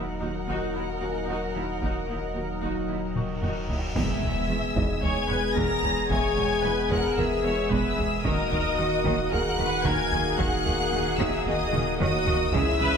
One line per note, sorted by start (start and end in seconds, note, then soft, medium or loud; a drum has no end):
0.00 3.95 D#1 soft
0.00 3.96 F#3 medium
0.00 3.66 A#3 medium
0.00 3.97 D#4 medium
0.00 3.66 F#4 medium
0.00 3.77 A#4 medium
0.00 3.97 A#4 medium
0.00 3.96 D#5 medium
0.00 3.73 F#5 medium
0.21 0.29 D#2 soft
0.21 0.29 D#4 soft
0.21 0.29 F#4 soft
0.47 0.56 D#2 medium
0.47 0.73 D#4 medium
0.47 0.73 F#4 medium
0.47 2.05 F#5 soft
0.47 taiko soft
0.74 0.83 D#2 soft
0.74 0.82 D#4 soft
0.74 0.82 E4 soft
1.01 1.10 D#2 soft
1.01 1.09 D#4 soft
1.01 1.09 F#4 soft
1.01 2.59 G#5 soft
1.28 1.37 D#2 soft
1.28 1.53 D#4 soft
1.28 1.53 F#4 medium
1.55 1.63 D#2 soft
1.55 1.63 D#4 soft
1.55 1.63 E4 soft
1.82 1.90 D#2 soft
1.82 2.07 D#4 soft
1.82 2.07 F#4 soft
1.82 taiko medium
1.82 cymbal swell soft
2.08 2.17 D#2 soft
2.08 2.16 D#4 soft
2.08 2.16 E4 soft
2.35 2.43 D#2 soft
2.35 2.43 D#4 soft
2.35 2.43 F#4 soft
2.62 2.70 D#2 soft
2.62 2.87 D#4 soft
2.62 2.87 F#4 soft
2.62 taiko medium
2.88 2.97 D#2 soft
2.88 2.97 D#4 soft
2.88 2.96 E4 soft
3.15 3.23 D#2 soft
3.15 3.23 D#4 soft
3.15 3.23 F#4 soft
3.15 3.93 C#6 soft
3.15 taiko mid medium
3.42 3.50 D#2 soft
3.42 3.67 D#4 soft
3.42 3.68 F#4 soft
3.42 taiko low-mid medium
3.69 3.77 D#2 soft
3.69 3.77 D#4 soft
3.69 3.77 E4 soft
3.69 taiko low medium
3.96 8.26 E1 medium
3.96 4.04 E1 medium
3.96 4.04 E2 medium
3.96 8.21 G#3 medium
3.96 8.21 B3 medium
3.96 8.21 G#4 medium
3.96 4.99 E5 medium
3.96 8.21 G#5 medium
3.96 5.00 E6 medium
3.96 taiko loud
3.96 impact medium
4.23 4.32 E1 medium
4.23 4.31 E2 medium
4.23 taiko low soft
4.49 4.57 E1 medium
4.49 4.58 E2 medium
4.76 4.84 E1 medium
4.76 4.84 E2 medium
4.76 6.33 D#4 soft
4.76 6.33 D#5 soft
4.76 taiko medium
5.03 5.11 E1 medium
5.03 5.11 E2 medium
5.03 5.28 C#5 medium
5.03 5.56 G#5 medium
5.03 5.57 G#6 loud
5.03 taiko low medium
5.30 5.38 E1 medium
5.30 5.38 E2 medium
5.30 5.57 B4 medium
5.56 5.65 E1 medium
5.56 5.65 E2 medium
5.56 5.84 A#4 medium
5.56 6.10 A#5 medium
5.56 6.10 A#6 loud
5.56 taiko medium
5.83 5.92 E1 medium
5.83 5.91 E2 medium
5.83 6.10 G#4 medium
5.83 taiko low medium
6.10 6.19 E1 medium
6.10 6.18 E2 medium
6.10 6.64 C#5 medium
6.10 7.68 E5 medium
6.10 6.90 G#5 loud
6.10 6.89 G#6 loud
6.10 taiko loud
6.37 6.46 E1 medium
6.37 6.45 E2 medium
6.37 taiko low medium
6.64 6.72 E1 medium
6.64 6.72 E2 medium
6.64 6.91 B4 medium
6.91 6.99 E1 medium
6.91 6.99 E2 medium
6.91 7.18 A#4 medium
6.91 7.18 F#5 medium
6.91 7.18 F#6 medium
6.91 taiko medium
7.17 7.26 E1 medium
7.17 7.26 E2 medium
7.17 7.44 G#4 medium
7.17 8.75 A#4 medium
7.17 7.70 E5 medium
7.17 7.71 E6 medium
7.17 taiko low medium
7.44 7.53 E1 medium
7.44 7.53 E2 medium
7.44 7.71 C#5 medium
7.70 7.79 E1 medium
7.70 7.79 E2 medium
7.70 7.98 B4 medium
7.70 8.24 E5 medium
7.70 8.25 E6 loud
7.70 taiko medium
7.97 8.06 E1 medium
7.97 8.06 E2 medium
7.97 8.25 G#4 medium
7.97 taiko low medium
8.24 12.55 D#1 medium
8.24 8.32 D#2 medium
8.24 12.53 D#3 medium
8.24 8.32 D#3 medium
8.24 12.54 A#3 medium
8.24 12.53 D#4 medium
8.24 12.54 F#4 medium
8.24 8.77 A#4 medium
8.24 12.53 A#4 medium
8.24 9.33 D#5 medium
8.24 12.53 F#5 medium
8.24 9.32 D#6 loud
8.24 taiko loud
8.51 8.60 D#2 medium
8.51 8.59 D#3 medium
8.51 taiko low medium
8.78 8.86 D#2 medium
8.78 8.86 D#3 medium
8.78 9.32 F#4 medium
9.05 9.13 D#2 medium
9.05 9.13 D#3 medium
9.05 taiko medium
9.31 9.40 D#2 medium
9.31 9.40 D#3 medium
9.31 10.88 G#4 medium
9.31 9.59 A#4 medium
9.31 9.85 F#5 medium
9.31 9.85 F#6 loud
9.31 taiko low medium
9.58 9.67 D#2 medium
9.58 9.67 D#3 medium
9.58 9.85 B4 medium
9.85 9.93 D#2 loud
9.85 9.93 D#3 medium
9.85 10.12 A#4 medium
9.85 10.39 G#5 medium
9.85 10.39 G#6 loud
9.85 taiko medium
10.12 10.20 D#2 medium
10.12 10.20 D#3 medium
10.12 12.00 G#4 medium
10.12 taiko low medium
10.39 10.47 D#2 medium
10.39 10.47 D#3 medium
10.39 11.18 F#5 medium
10.39 11.20 F#6 loud
10.39 taiko loud
10.65 10.73 D#2 medium
10.65 10.74 D#3 medium
10.65 12.22 A#3 medium
10.65 12.22 A#4 medium
10.65 taiko low medium
10.92 11.00 D#2 medium
10.92 11.01 D#3 medium
11.19 11.27 D#2 loud
11.19 11.27 D#3 medium
11.19 11.47 E5 medium
11.19 11.46 E6 loud
11.19 taiko medium
11.46 11.54 D#2 medium
11.46 11.55 D#3 medium
11.46 11.99 D#5 medium
11.46 11.99 D#6 loud
11.46 taiko low medium
11.73 11.81 D#2 medium
11.73 11.81 D#3 medium
11.73 taiko mid medium
11.99 12.08 D#2 medium
11.99 12.08 D#3 medium
11.99 12.53 F#4 medium
11.99 12.97 C#5 medium
11.99 12.53 D#5 medium
11.99 12.53 D#6 loud
11.99 taiko low-mid loud
12.26 12.34 D#2 medium
12.26 12.35 D#3 medium
12.26 taiko low loud
12.52 12.61 C#2 loud
12.52 12.97 C#2 medium
12.52 12.62 C#3 loud
12.52 12.97 E3 medium
12.52 12.97 G#3 loud
12.52 12.97 E4 medium
12.52 12.97 E4 loud
12.52 12.97 G#4 medium
12.52 12.80 G#4 medium
12.52 12.97 C#5 medium
12.52 12.97 E5 loud
12.52 12.97 E6 loud
12.52 taiko loud
12.79 12.88 C#2 medium
12.79 12.88 C#3 medium
12.79 12.97 B4 loud
12.79 taiko low medium